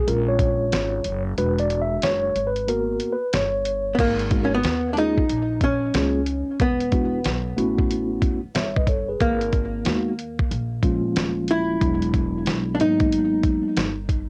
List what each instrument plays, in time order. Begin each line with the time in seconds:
0.07 upright bass A#1, tine electric piano G#3 C#4 F4 A#4, closed hi-hat
0.28 tine electric piano C#5
0.39 kick, closed hi-hat
0.72 upright bass G#1, snare, closed hi-hat
1.04 upright bass F#1, closed hi-hat
1.37 upright bass E1, tine electric piano G#3 D4 F#4 B4, closed hi-hat
1.59 tine electric piano D5, closed hi-hat
1.70 closed hi-hat
1.82 tine electric piano E5
2.02 upright bass F#1, tine electric piano C#5, snare, closed hi-hat
2.36 upright bass G#1, closed hi-hat
2.47 tine electric piano B4
2.56 closed hi-hat
2.68 tine electric piano A#3 B3 F#4 A#4, closed hi-hat
3.00 closed hi-hat
3.12 tine electric piano B4
3.33 upright bass G1, tine electric piano C#5, snare, closed hi-hat
3.65 closed hi-hat
3.95 upright bass G#1, hollow-body jazz guitar B3, kick, crash
3.99 hollow-body jazz guitar A#3, closed hi-hat
4.19 closed hi-hat
4.30 tine electric piano G#3 B3 D#4 F#4 A#4, kick, closed hi-hat
4.45 hollow-body jazz guitar C#4
4.54 hollow-body jazz guitar B3
4.64 upright bass D#2, snare, closed hi-hat
4.93 tine electric piano G#3 A#3 C#4 F4, hollow-body jazz guitar D4, closed hi-hat
4.97 hollow-body jazz guitar D#4, tine electric piano G#4
5.18 kick
5.29 upright bass A#1, closed hi-hat
5.61 hollow-body jazz guitar C#4, kick, closed hi-hat
5.94 upright bass C#2, tine electric piano G#3 A#3 C#4 F4 G#4, snare, closed hi-hat
6.26 closed hi-hat
6.48 muted upright bass stroke
6.60 upright bass E1, hollow-body jazz guitar B3, kick, closed hi-hat
6.80 closed hi-hat
6.91 tine electric piano G#3 B3 D4 E4 F#4, kick, closed hi-hat
7.24 upright bass B1, snare, closed hi-hat
7.57 upright bass A1, tine electric piano A3 B3 C#4 E4 F#4, closed hi-hat
7.78 kick
7.91 closed hi-hat
8.22 kick, closed hi-hat
8.44 muted upright bass stroke
8.55 upright bass G1, tine electric piano C#5 E5, snare, closed hi-hat
8.76 tine electric piano B4 D#5, kick
8.87 tine electric piano A4 C#5, kick, closed hi-hat
9.09 tine electric piano G#4 B4
9.20 upright bass G#1, hollow-body jazz guitar A#3, kick, closed hi-hat
9.41 closed hi-hat
9.53 kick, closed hi-hat
9.85 upright bass D#2, tine electric piano G#3 A#3 B3 D#4 F#4, snare, closed hi-hat
10.19 closed hi-hat
10.39 kick
10.51 upright bass A#1, closed hi-hat
10.83 tine electric piano F3 G#3 A#3 C#4 F4, kick, closed hi-hat
11.16 upright bass D#1, snare, closed hi-hat
11.48 hollow-body jazz guitar E4, closed hi-hat
11.80 upright bass E1, tine electric piano F#3 G#3 B3 D4 E4, kick, closed hi-hat
12.02 closed hi-hat
12.14 kick, closed hi-hat
12.46 upright bass B1, snare, closed hi-hat
12.75 hollow-body jazz guitar D4
12.79 upright bass G#1, tine electric piano F#3 G#3 A#3 B3 D#4, hollow-body jazz guitar D#4, closed hi-hat
13.00 kick, closed hi-hat
13.12 closed hi-hat
13.43 kick, closed hi-hat
13.77 upright bass G1, snare, closed hi-hat
14.09 kick, closed hi-hat